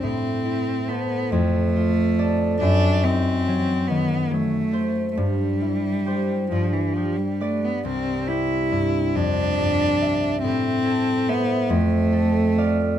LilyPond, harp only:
\new Staff \with { instrumentName = "Harp" } { \time 6/8 \key c \major \tempo 4. = 46 <a, e' c''>8 e'8 <a' c''>8 f,8 f'8 <a' d''>8 | fis,8 dis'8 fis8 dis8 fis8 c''8 | g,8 e'8 <g' c''>8 g,8 g'8 <b' d''>8 | c,8 g'8 g,8 f,8 g,8 e''8 |
a,8 a'8 <c'' e''>8 f,8 a'8 <d'' f''>8 | }